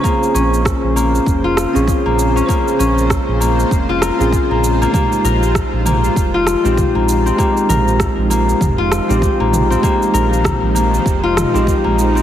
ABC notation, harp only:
X:1
M:4/4
L:1/16
Q:"Swing 16ths" 1/4=98
K:Bbdor
V:1 name="Harp"
B,2 D4 B, z2 F2 D z B,2 D | B,2 D4 B, z2 F B F z B, z B, | B,2 B z3 B, z2 F2 C z B,2 C | B,2 B z3 B, z2 F2 C z B,2 C |
B,2 B z3 B, z2 F2 C z B,2 C |]